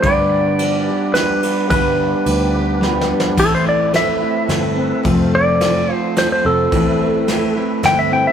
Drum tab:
CC |------------------|------------------|x-----------------|------------------|
RD |x-----x-----x--x--|x-----x-----------|------x-----x-----|x-----x-----x-----|
SD |------------o-----|------------o-o-o-|------o-----o-----|------o-----o-----|
BD |o-----------------|o-----------------|o-----------------|o-----------------|

CC |------------------|
RD |x-----x-----x-----|
SD |------o-----o-----|
BD |o-----------------|